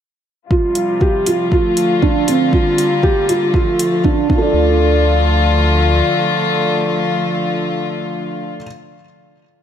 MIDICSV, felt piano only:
0, 0, Header, 1, 2, 480
1, 0, Start_track
1, 0, Key_signature, -1, "minor"
1, 0, Tempo, 504202
1, 491, Time_signature, 4, 2, 24, 8
1, 9166, End_track
2, 0, Start_track
2, 0, Title_t, "Felt piano"
2, 0, Program_c, 0, 0
2, 484, Note_on_c, 0, 65, 80
2, 917, Note_off_c, 0, 65, 0
2, 969, Note_on_c, 0, 67, 80
2, 1185, Note_off_c, 0, 67, 0
2, 1206, Note_on_c, 0, 65, 69
2, 1424, Note_off_c, 0, 65, 0
2, 1453, Note_on_c, 0, 65, 90
2, 1882, Note_off_c, 0, 65, 0
2, 1927, Note_on_c, 0, 62, 77
2, 2144, Note_off_c, 0, 62, 0
2, 2171, Note_on_c, 0, 60, 76
2, 2386, Note_off_c, 0, 60, 0
2, 2410, Note_on_c, 0, 65, 94
2, 2841, Note_off_c, 0, 65, 0
2, 2887, Note_on_c, 0, 67, 89
2, 3104, Note_off_c, 0, 67, 0
2, 3129, Note_on_c, 0, 65, 74
2, 3345, Note_off_c, 0, 65, 0
2, 3373, Note_on_c, 0, 65, 97
2, 3802, Note_off_c, 0, 65, 0
2, 3855, Note_on_c, 0, 62, 83
2, 4068, Note_off_c, 0, 62, 0
2, 4093, Note_on_c, 0, 62, 73
2, 4130, Note_on_c, 0, 65, 75
2, 4170, Note_on_c, 0, 69, 77
2, 4206, Note_on_c, 0, 74, 76
2, 8129, Note_off_c, 0, 62, 0
2, 8167, Note_off_c, 0, 65, 0
2, 8206, Note_off_c, 0, 69, 0
2, 8242, Note_off_c, 0, 74, 0
2, 9166, End_track
0, 0, End_of_file